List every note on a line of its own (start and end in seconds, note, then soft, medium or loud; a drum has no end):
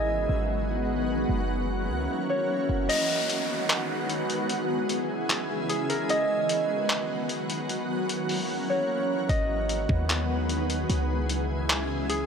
0.00 0.27 G#1 loud
0.00 1.28 D#3 medium
0.00 2.86 F#3 medium
0.00 1.26 G#3 medium
0.00 1.28 B3 medium
0.00 2.86 F#4 medium
0.00 1.57 G#4 medium
0.00 1.62 A#4 medium
0.00 1.48 D#5 loud
0.29 1.25 G#1 loud
1.29 1.91 F#1 loud
1.29 2.88 E3 medium
1.29 2.88 A#3 medium
1.29 2.88 C#4 medium
1.89 2.08 C#2 loud
2.30 4.21 C#5 medium
2.69 2.89 F#1 loud
2.89 4.48 D#3 medium
2.89 4.48 F#3 medium
2.89 7.65 G#3 medium
2.89 4.48 B3 medium
2.89 4.48 F#4 medium
2.89 4.67 D#5 loud
2.89 closed hi-hat medium
2.89 crash medium
2.89 downlifter medium
3.29 closed hi-hat medium
3.69 clap loud
3.69 closed hi-hat medium
4.09 closed hi-hat medium
4.30 closed hi-hat medium
4.49 6.08 C#3 medium
4.49 6.08 E3 medium
4.49 6.08 E4 medium
4.49 6.08 G#4 medium
4.49 closed hi-hat medium
4.89 closed hi-hat medium
5.29 clap loud
5.29 closed hi-hat medium
5.69 7.96 G#4 medium
5.69 closed hi-hat medium
5.89 8.01 A#4 medium
5.89 closed hi-hat medium
6.09 7.68 D#3 medium
6.09 10.86 F#3 medium
6.09 7.68 B3 medium
6.09 10.86 F#4 medium
6.09 7.88 D#5 loud
6.09 closed hi-hat medium
6.49 closed hi-hat medium
6.89 clap loud
6.89 closed hi-hat medium
7.29 closed hi-hat medium
7.50 closed hi-hat medium
7.69 9.28 E3 medium
7.69 9.28 A#3 medium
7.69 9.28 C#4 medium
7.69 closed hi-hat medium
8.09 closed hi-hat medium
8.29 open hi-hat medium
8.70 10.61 C#5 medium
9.29 9.87 G#1 loud
9.29 10.88 D#3 medium
9.29 12.26 G#3 medium
9.29 10.88 B3 medium
9.29 11.08 D#5 loud
9.29 kick loud
9.29 closed hi-hat medium
9.69 closed hi-hat medium
9.89 10.85 D#2 loud
9.89 kick medium
10.09 clap loud
10.09 closed hi-hat medium
10.49 closed hi-hat medium
10.70 closed hi-hat medium
10.90 12.26 C#2 loud
10.90 12.26 C#3 medium
10.90 12.26 E3 medium
10.90 12.26 E4 medium
10.90 12.26 G#4 medium
10.90 closed hi-hat medium
11.29 closed hi-hat medium
11.69 clap loud
11.69 closed hi-hat medium
12.09 12.26 G#4 medium
12.09 closed hi-hat medium